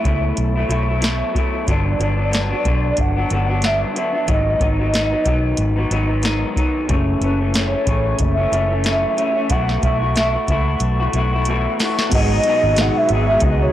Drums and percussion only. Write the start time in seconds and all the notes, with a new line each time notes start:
0.05 kick, closed hi-hat
0.37 closed hi-hat
0.71 closed hi-hat
1.02 snare, closed hi-hat
1.35 kick, closed hi-hat
1.68 kick, closed hi-hat
2.01 closed hi-hat
2.33 snare, closed hi-hat
2.65 kick, closed hi-hat
2.97 kick, closed hi-hat
3.30 closed hi-hat
3.62 snare, closed hi-hat
3.96 closed hi-hat
4.28 kick, closed hi-hat
4.61 kick, closed hi-hat
4.94 snare, closed hi-hat
5.25 kick, closed hi-hat
5.57 closed hi-hat
5.91 closed hi-hat
6.23 snare, closed hi-hat
6.56 kick, closed hi-hat
6.89 kick, closed hi-hat
7.22 closed hi-hat
7.54 snare, closed hi-hat
7.87 kick, closed hi-hat
8.19 kick, closed hi-hat
8.53 closed hi-hat
8.84 snare, closed hi-hat
9.18 closed hi-hat
9.50 kick, closed hi-hat
9.69 snare
9.83 kick, closed hi-hat
10.16 snare, closed hi-hat
10.48 kick, closed hi-hat
10.80 closed hi-hat
11.13 closed hi-hat
11.45 closed hi-hat
11.80 snare, open hi-hat
11.99 snare
12.12 kick, closed hi-hat, crash
12.43 closed hi-hat
12.76 snare, closed hi-hat
13.09 closed hi-hat
13.40 kick, closed hi-hat